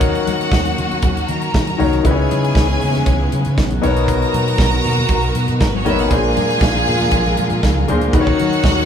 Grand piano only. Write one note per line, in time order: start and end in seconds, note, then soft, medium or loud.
0.00 0.56 D#3 medium
0.00 0.57 D#4 medium
0.00 0.57 F#4 medium
0.00 0.57 A#4 medium
0.00 0.57 C#5 loud
1.78 1.97 D#3 medium
1.78 1.97 D#4 medium
1.78 1.98 F#4 medium
1.78 1.98 A#4 medium
1.78 1.98 C#5 medium
2.04 2.77 C#3 medium
2.04 2.77 B3 medium
2.04 2.77 D#4 medium
2.04 2.77 E4 medium
2.04 2.11 B4 medium
2.11 2.80 C#5 medium
3.82 4.64 B2 medium
3.82 4.64 B3 medium
3.82 4.64 D#4 medium
3.82 4.64 A#4 medium
3.82 4.65 C#5 loud
5.85 6.04 B2 medium
5.85 6.04 B3 medium
5.85 6.04 D#4 medium
5.85 6.04 A#4 medium
5.85 6.04 C#5 medium
6.10 6.83 A#2 medium
6.10 6.83 A#3 medium
6.10 6.83 D4 medium
6.10 6.84 G#4 medium
6.10 6.84 C5 medium
7.88 8.07 A#2 medium
7.88 8.07 A#3 medium
7.88 8.07 D4 medium
7.88 8.07 G#4 medium
7.88 8.08 C5 loud
8.13 8.85 D#3 medium
8.13 8.85 D#4 medium
8.13 8.85 F#4 medium
8.13 8.85 A#4 medium
8.13 8.21 B4 medium
8.21 8.85 C#5 loud